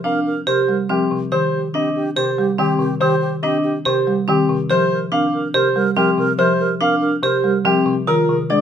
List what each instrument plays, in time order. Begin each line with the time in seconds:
0.04 marimba C4, vibraphone D4, alto flute A#4, grand piano F5
0.26 alto flute A#4
0.47 marimba C3, vibraphone G4, alto flute A#4, grand piano C5
0.68 marimba G3, alto flute A#4
0.89 marimba F3, vibraphone C4, grand piano G4, alto flute A#4
1.11 marimba C3
1.32 marimba D#3, vibraphone G4, alto flute G4, grand piano C5
1.53 alto flute G4
1.74 marimba C4, vibraphone D4, alto flute G4, grand piano D#5
1.95 alto flute G4
2.16 marimba C3, alto flute G4, vibraphone G4, grand piano C5
2.37 marimba G3, alto flute G4
2.58 marimba D#3, vibraphone C4, alto flute G4, grand piano G4
2.79 marimba C3, alto flute G4
3.00 marimba D#3, alto flute G4, vibraphone G4, grand piano C5
3.21 alto flute G4
3.43 marimba C4, vibraphone D4, alto flute G4, grand piano D#5
3.64 alto flute G4
3.85 marimba C3, vibraphone G4, alto flute G4, grand piano C5
4.07 marimba G3, alto flute G4
4.28 marimba D#3, vibraphone C4, alto flute G4, grand piano G4
4.50 marimba C3
4.70 marimba F3, vibraphone G4, alto flute A#4, grand piano C5
4.91 alto flute A#4
5.12 marimba C4, vibraphone D4, alto flute A#4, grand piano F5
5.34 alto flute A#4
5.53 marimba C3, vibraphone G4, alto flute A#4, grand piano C5
5.76 marimba G3, alto flute A#4
5.95 marimba F3, vibraphone C4, grand piano G4, alto flute A#4
6.18 marimba C3, alto flute A#4
6.38 marimba F3, vibraphone G4, alto flute A#4, grand piano C5
6.60 alto flute A#4
6.80 marimba C4, vibraphone D4, alto flute A#4, grand piano F5
7.01 alto flute A#4
7.23 marimba C3, vibraphone G4, alto flute A#4, grand piano C5
7.43 marimba G3, alto flute A#4
7.65 marimba F3, vibraphone C4, grand piano G4, alto flute A#4
7.86 marimba C3
8.07 marimba D#3, vibraphone F4, alto flute G#4, grand piano A#4
8.28 marimba C3, alto flute G#4
8.49 marimba G#3, vibraphone D4, alto flute G#4, grand piano D5